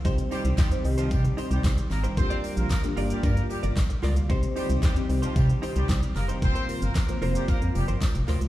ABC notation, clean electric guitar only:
X:1
M:4/4
L:1/16
Q:1/4=113
K:Cm
V:1 name="Clean electric guitar"
[EGc] z [EGc] [EGc] [EGc] z2 [EGc] z2 [EGc] [EGc] [EGc] z2 [EGc] | z [FBd] [FBd] z3 [FBd] [FBd] [FBd] z2 [FBd] z2 [FBd] z | [EGc] z [EGc] [EGc] [EGc] z2 [EGc] z2 [EGc] [EGc] [EGc] z2 [EGc] | z [FBc] [FBc] z3 [FBc] [FBc] [FBc] z2 [FBc] z2 [FBc] z |]